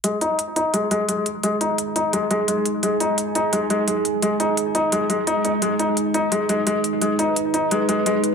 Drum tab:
HH |xxxxxxxx|xxxxxxxx|xxxxxxxx|xxxxxxxx|

HH |xxxxxxxx|xxxxxxxx|